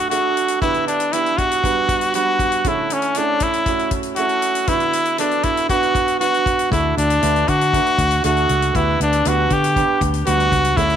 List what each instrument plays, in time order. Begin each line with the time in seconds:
Already playing: grand piano D3 A3 D4 F#4 A4
0.10 grand piano A3 D4 F#4 A4, trumpet F#4, closed hi-hat
0.37 closed hi-hat
0.48 closed hi-hat
0.61 grand piano D3 B3 D4 G4 B4, trumpet E4, kick, closed hi-hat
0.74 closed hi-hat
0.88 trumpet D4, closed hi-hat
1.00 closed hi-hat
1.13 grand piano B3 D4 G4 B4, trumpet E4, closed hi-hat
1.26 closed hi-hat
1.38 trumpet F#4, kick, closed hi-hat
1.51 closed hi-hat
1.63 grand piano G3 B3 D4 B4, kick, closed hi-hat
1.89 kick, closed hi-hat
2.01 closed hi-hat
2.14 grand piano G3 B3 D4 B4, trumpet F#4, closed hi-hat
2.39 kick, closed hi-hat
2.52 closed hi-hat
2.65 grand piano D3 A3 C#4 E4 A4, trumpet E4, kick, closed hi-hat
2.90 trumpet C#4, closed hi-hat
3.02 closed hi-hat
3.15 grand piano A3 C#4 E4 A4, trumpet D4, closed hi-hat
3.40 trumpet E4, kick, closed hi-hat
3.54 closed hi-hat
3.66 grand piano A3 C#4 E4 F#4, kick, closed hi-hat
3.79 closed hi-hat
3.91 kick, closed hi-hat
4.03 closed hi-hat
4.16 grand piano A3 C#4 E4 A4, trumpet F#4, closed hi-hat
4.29 closed hi-hat
4.42 closed hi-hat
4.55 closed hi-hat
4.67 grand piano D3 B3 D4 F#4 B4, trumpet E4, kick, closed hi-hat
4.80 closed hi-hat
4.93 closed hi-hat
5.05 closed hi-hat
5.18 grand piano B3 D4 F#4 A4, trumpet D4, closed hi-hat
5.31 closed hi-hat
5.43 trumpet E4, kick, closed hi-hat
5.57 closed hi-hat
5.69 grand piano B3 D4 F#4 B4, trumpet F#4, kick, closed hi-hat
5.83 closed hi-hat
5.95 kick, closed hi-hat
6.08 closed hi-hat
6.20 grand piano B3 D4 F#4 B4, trumpet F#4, closed hi-hat
6.34 closed hi-hat
6.46 kick, closed hi-hat
6.59 closed hi-hat
6.70 picked electric bass D2, grand piano D3 A3 D4 F#4 A4, trumpet E4, kick, closed hi-hat
6.97 picked electric bass D2, trumpet D4, closed hi-hat
7.10 closed hi-hat
7.21 picked electric bass D2, grand piano A3 D4 F#4 B4, closed hi-hat
7.36 closed hi-hat
7.48 picked electric bass D3, trumpet F#4, kick, closed hi-hat
7.61 closed hi-hat
7.73 grand piano A3 D4 F#4 B4, kick, closed hi-hat
7.86 closed hi-hat
7.98 picked electric bass D2, kick, closed hi-hat
8.11 closed hi-hat
8.23 picked electric bass D2, grand piano A3 D4 F#4 A4, trumpet F#4, closed hi-hat
8.37 closed hi-hat
8.49 picked electric bass C#2, closed hi-hat
8.62 closed hi-hat
8.74 picked electric bass D2, grand piano D3 B3 D4 G4 B4, trumpet E4, kick, closed hi-hat
9.00 picked electric bass D2, trumpet D4, closed hi-hat
9.13 closed hi-hat
9.25 picked electric bass D2, grand piano B3 D4 G4 B4, trumpet F#4, closed hi-hat
9.50 picked electric bass D3, trumpet G4, kick, closed hi-hat
9.64 closed hi-hat
9.75 grand piano B3 D4 G4 B4, kick, closed hi-hat
10.01 picked electric bass D2, kick, closed hi-hat
10.14 closed hi-hat
10.25 picked electric bass D2, grand piano G3 B3 D4 B4, trumpet F#4, closed hi-hat
10.40 closed hi-hat
10.52 picked electric bass C#2, kick, closed hi-hat
10.64 closed hi-hat
10.76 picked electric bass D2, grand piano D3 A3 C#4 E4 A4, trumpet E4, kick, closed hi-hat
10.90 closed hi-hat